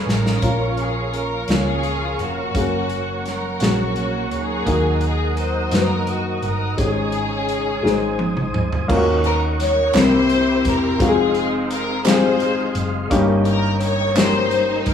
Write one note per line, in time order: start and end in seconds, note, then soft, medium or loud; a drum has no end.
0.00 2.51 F3 medium
0.00 0.36 A3 medium
0.00 0.35 C#4 medium
0.00 4.62 C#4 medium
0.00 0.35 D#4 soft
0.00 0.39 D#4 medium
0.00 0.40 D#4 medium
0.00 0.36 F4 soft
0.00 0.39 G#4 medium
0.00 0.41 G#4 medium
0.00 0.40 D#5 medium
0.00 2.52 F5 soft
0.00 4.63 C#6 medium
0.07 0.39 A1 medium
0.07 1.10 C#4 medium
0.07 1.10 F4 medium
0.07 0.75 A#4 medium
0.07 snare medium
0.26 snare medium
0.42 1.44 A#1 medium
0.42 1.45 A#2 soft
0.42 6.74 A#3 medium
0.42 1.42 A#3 medium
0.42 1.42 C#4 medium
0.42 1.43 F4 medium
0.42 6.75 A#4 medium
0.42 1.43 A#4 medium
0.42 4.63 C#5 soft
0.42 2.53 F5 medium
0.42 kick medium
0.42 closed hi-hat medium
0.77 closed hi-hat soft
0.81 1.15 G#4 medium
1.14 1.50 A#4 medium
1.14 closed hi-hat soft
1.48 2.15 C#2 medium
1.48 2.48 A#3 medium
1.48 2.49 C#4 medium
1.48 2.20 C#4 medium
1.48 2.49 F4 soft
1.48 2.52 F4 medium
1.48 2.49 A#4 medium
1.48 snare medium
1.48 closed hi-hat medium
1.52 2.21 G#4 medium
1.83 closed hi-hat soft
2.19 2.52 F1 medium
2.19 3.23 A#3 medium
2.19 3.22 C#4 medium
2.19 3.27 F#4 medium
2.19 closed hi-hat soft
2.54 3.57 F#1 medium
2.54 6.75 F#3 medium
2.54 3.54 A#3 medium
2.54 3.54 C#4 medium
2.54 3.55 F#4 medium
2.54 6.75 F#4 medium
2.54 2.62 G#4 medium
2.54 6.75 F#5 soft
2.54 kick medium
2.54 closed hi-hat medium
2.63 3.58 A#4 medium
2.89 closed hi-hat soft
3.26 3.62 A#4 medium
3.26 snare soft
3.26 closed hi-hat soft
3.60 4.31 A#1 medium
3.60 4.60 A#3 medium
3.60 4.64 A#3 medium
3.60 4.60 C#4 medium
3.60 4.64 C#4 medium
3.60 4.61 F#4 medium
3.60 4.33 F#4 medium
3.60 3.69 G#4 soft
3.60 snare medium
3.60 closed hi-hat medium
3.69 4.65 A#4 medium
3.96 closed hi-hat soft
4.31 4.64 D2 medium
4.31 5.34 D#4 medium
4.31 5.03 G#4 medium
4.31 closed hi-hat soft
4.66 5.69 D#2 medium
4.66 5.69 D#3 medium
4.66 5.66 A#3 medium
4.66 5.66 D#4 medium
4.66 8.86 D#4 medium
4.66 5.67 F#4 medium
4.66 5.67 A#4 medium
4.66 8.86 D#5 soft
4.66 6.76 D#6 medium
4.66 kick medium
4.66 closed hi-hat medium
5.01 5.36 G#4 medium
5.01 closed hi-hat soft
5.37 5.74 C5 medium
5.37 closed hi-hat soft
5.71 6.39 F#2 medium
5.71 6.71 A#3 medium
5.71 6.72 D#4 medium
5.71 6.72 F#4 medium
5.71 5.80 B4 medium
5.71 snare medium
5.71 closed hi-hat medium
5.75 6.09 A#4 medium
5.81 6.76 C5 medium
6.07 closed hi-hat soft
6.11 6.45 F#4 medium
6.42 6.75 G1 medium
6.42 6.80 A#4 medium
6.42 closed hi-hat soft
6.77 7.80 G#1 medium
6.77 7.80 G#2 soft
6.77 8.87 C#3 medium
6.77 7.77 G#3 medium
6.77 8.88 G#3 medium
6.77 7.77 C#4 medium
6.77 8.51 C#4 medium
6.77 7.83 C#4 medium
6.77 8.51 D#4 medium
6.77 7.78 D#4 medium
6.77 6.86 G4 medium
6.77 8.55 G#4 medium
6.77 7.83 C#5 medium
6.77 8.88 G#5 soft
6.77 8.87 D#6 medium
6.77 kick medium
6.77 closed hi-hat medium
6.87 7.82 G#4 medium
7.12 closed hi-hat soft
7.49 closed hi-hat soft
7.83 8.54 G#1 medium
7.83 8.86 G#2 medium
7.83 8.83 G#3 medium
7.83 7.91 A#3 soft
7.83 8.83 D#4 medium
7.83 8.84 G#4 medium
7.83 8.89 C5 medium
7.83 snare soft
7.90 8.86 C5 medium
8.19 high tom medium
8.37 mid tom medium
8.54 8.87 D2 medium
8.54 mid tom medium
8.73 floor tom medium
8.88 9.91 D#2 loud
8.88 9.91 D#3 medium
8.88 9.88 A#3 medium
8.88 9.88 C#4 medium
8.88 9.88 D#4 medium
8.88 8.96 F4 medium
8.88 9.89 A#4 medium
8.88 10.99 A#4 medium
8.88 9.95 D#5 medium
8.88 9.95 F#5 medium
8.88 9.95 C#6 medium
8.88 kick loud
8.88 crash medium
8.96 9.92 F#4 medium
9.24 9.42 A#4 medium
9.24 closed hi-hat medium
9.60 9.94 C#5 loud
9.60 snare soft
9.60 closed hi-hat medium
9.93 10.61 C2 loud
9.93 10.97 C3 medium
9.93 10.93 A#3 medium
9.93 10.93 C4 medium
9.93 10.94 E4 medium
9.93 10.97 E4 medium
9.93 10.97 G4 medium
9.93 10.94 G4 medium
9.93 10.95 A#4 medium
9.93 10.66 C5 loud
9.93 10.99 E5 medium
9.93 11.00 G5 medium
9.93 13.08 C6 medium
9.93 snare loud
9.93 clap loud
9.93 closed hi-hat medium
10.30 closed hi-hat medium
10.65 10.97 E1 medium
10.65 11.02 A#4 medium
10.65 kick medium
10.65 closed hi-hat medium
11.00 12.72 F1 loud
11.00 11.99 G#3 medium
11.00 11.99 C4 medium
11.00 12.02 C4 medium
11.00 11.99 D#4 medium
11.00 12.02 D#4 medium
11.00 12.00 F4 medium
11.00 11.08 F#4 medium
11.00 13.09 G#4 medium
11.00 11.36 G#4 loud
11.00 14.94 D#5 medium
11.00 13.09 F5 medium
11.00 kick loud
11.00 closed hi-hat medium
11.09 12.03 G#4 medium
11.34 11.53 G#4 medium
11.34 closed hi-hat medium
11.71 12.04 A#4 medium
11.71 closed hi-hat medium
12.05 13.04 G#3 medium
12.05 13.04 C4 medium
12.05 13.07 D#4 medium
12.05 13.05 D#4 medium
12.05 13.05 F4 medium
12.05 12.13 G4 medium
12.05 13.07 G#4 medium
12.05 12.85 C5 loud
12.05 snare loud
12.05 clap loud
12.05 closed hi-hat medium
12.13 13.08 G#4 medium
12.40 closed hi-hat medium
12.75 13.08 F#1 medium
12.75 closed hi-hat medium
13.10 14.82 G1 loud
13.10 14.13 G2 medium
13.10 14.09 A#3 medium
13.10 14.10 C#4 medium
13.10 14.10 D#4 medium
13.10 14.10 G4 medium
13.10 14.94 A#4 medium
13.10 14.11 A#4 loud
13.10 14.94 G5 medium
13.10 kick loud
13.10 closed hi-hat medium
13.45 13.79 A#4 medium
13.45 closed hi-hat medium
13.81 14.14 C#5 loud
13.81 closed hi-hat medium
14.14 14.94 A#3 medium
14.14 14.94 C#4 medium
14.14 14.94 D#4 medium
14.14 14.94 G4 medium
14.14 14.94 A#4 medium
14.14 14.87 C5 loud
14.14 snare loud
14.14 clap loud
14.14 closed hi-hat medium
14.51 closed hi-hat medium
14.86 14.94 G1 medium
14.86 14.94 A#4 medium
14.86 kick medium
14.86 closed hi-hat medium